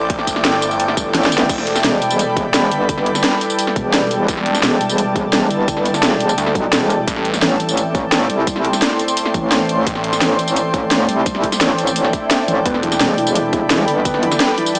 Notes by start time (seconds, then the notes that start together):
Already playing: A1 A3 E4 A4 C5 D5 E5 G5 D6
0.10 kick, closed hi-hat
0.19 snare
0.27 G1, kick, closed hi-hat, tambourine
0.36 snare
0.45 snare, closed hi-hat
0.53 snare
0.62 closed hi-hat, tambourine
0.71 tambourine
0.80 closed hi-hat
0.88 snare
0.97 kick, closed hi-hat, tambourine
1.14 A1, snare, closed hi-hat
1.23 snare, tambourine
1.32 G1, closed hi-hat, tambourine
1.38 snare
1.49 E1 G3 E4 B4 D5, kick, closed hi-hat, tambourine, crash
1.58 snare
1.67 B5, closed hi-hat
1.76 snare, tambourine
1.84 E1, snare, closed hi-hat, tambourine
2.02 closed hi-hat, tambourine
2.10 tambourine
2.19 closed hi-hat, tambourine
2.37 kick, closed hi-hat, tambourine
2.54 snare, closed hi-hat, tambourine
2.71 G1, closed hi-hat, tambourine
2.89 kick, closed hi-hat, tambourine
2.98 snare
3.06 closed hi-hat
3.15 snare, tambourine
3.24 snare, closed hi-hat, tambourine
3.33 snare
3.41 closed hi-hat, tambourine
3.50 tambourine
3.59 closed hi-hat, tambourine
3.67 snare
3.76 E1, kick, closed hi-hat, tambourine
3.94 snare, closed hi-hat, tambourine
4.11 closed hi-hat, tambourine
4.22 A5
4.28 E1 A4, kick, closed hi-hat, tambourine
4.37 snare
4.46 closed hi-hat
4.55 snare, tambourine
4.63 E1, snare, closed hi-hat, tambourine
4.81 closed hi-hat, tambourine
4.89 tambourine
4.98 closed hi-hat, tambourine
5.16 kick, closed hi-hat, tambourine
5.33 snare, closed hi-hat, tambourine
5.51 G1, closed hi-hat, tambourine
5.68 kick, closed hi-hat, tambourine
5.77 snare
5.86 closed hi-hat, tambourine
5.94 snare, tambourine
6.03 E1, snare, closed hi-hat, tambourine
6.12 snare
6.20 closed hi-hat, tambourine
6.29 tambourine
6.38 D2, closed hi-hat, tambourine
6.47 snare
6.55 B1, kick, closed hi-hat, tambourine
6.73 E1, snare, closed hi-hat, tambourine
6.90 closed hi-hat, tambourine
7.08 A1 A3 C4 A4 C5, kick, closed hi-hat, tambourine
7.16 snare
7.25 closed hi-hat
7.34 snare, tambourine
7.42 A1, snare, closed hi-hat, tambourine
7.47 G5
7.52 D5
7.60 closed hi-hat, tambourine
7.69 tambourine
7.77 closed hi-hat, tambourine
7.95 kick, closed hi-hat, tambourine
8.12 snare, closed hi-hat, tambourine
8.26 C2 C6, closed hi-hat, tambourine
8.47 kick, closed hi-hat, tambourine
8.56 snare
8.65 closed hi-hat
8.73 snare, tambourine
8.82 snare, closed hi-hat, tambourine
8.91 snare
8.99 closed hi-hat, tambourine
9.08 tambourine
9.17 closed hi-hat, tambourine
9.26 snare
9.34 A1, kick, closed hi-hat, tambourine
9.52 snare, closed hi-hat, tambourine
9.69 closed hi-hat, tambourine
9.87 A1 D4, kick, closed hi-hat, tambourine
9.95 snare
10.04 closed hi-hat
10.13 snare, tambourine
10.21 A1, snare, closed hi-hat, tambourine
10.39 closed hi-hat, tambourine
10.48 tambourine
10.56 closed hi-hat, tambourine
10.74 kick, closed hi-hat, tambourine
10.91 snare, closed hi-hat, tambourine
11.09 C2, closed hi-hat, tambourine
11.26 kick, closed hi-hat, tambourine
11.35 snare
11.44 kick, closed hi-hat, tambourine
11.52 snare, tambourine
11.61 A1, snare, closed hi-hat, tambourine
11.70 snare
11.78 closed hi-hat, tambourine
11.87 tambourine
11.96 closed hi-hat, tambourine, swell
12.05 snare
12.13 kick, closed hi-hat, tambourine
12.31 snare, closed hi-hat, tambourine
12.48 A1, closed hi-hat, tambourine
12.65 E1 G3 B3 E4 B4, kick, closed hi-hat, tambourine
12.74 snare
12.83 E3, closed hi-hat
12.92 snare, tambourine
13.00 E1, snare, closed hi-hat, tambourine
13.07 B5
13.18 E3, open hi-hat, tambourine
13.27 tambourine
13.35 E3, closed hi-hat, tambourine
13.53 E4, kick, closed hi-hat, tambourine
13.70 E3, snare, closed hi-hat, tambourine
13.88 G1, open hi-hat, tambourine
14.05 B3, kick, closed hi-hat, tambourine
14.14 snare
14.23 E3, closed hi-hat
14.32 snare, tambourine
14.40 snare, closed hi-hat, tambourine
14.49 snare
14.58 E3, open hi-hat, tambourine
14.66 tambourine
14.75 E3, closed hi-hat, tambourine